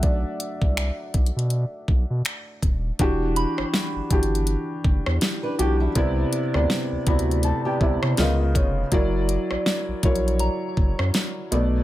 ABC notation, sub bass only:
X:1
M:4/4
L:1/16
Q:"Swing 16ths" 1/4=81
K:Em
V:1 name="Sub bass" clef=bass
B,,,2 z C,,2 z B,,, B,,2 z B,,, B,, z2 ^D,,,2 | E,,,3 G,,, z G,,, G,,,3 z F,,, E,, z2 B,,,2 | C,,2 z D,, z D,, D,,3 z C,, C, ^C,,2 ^E,,,2 | F,,,3 ^A,,, z A,,, A,,,3 z F,,, F,, z2 B,,,2 |]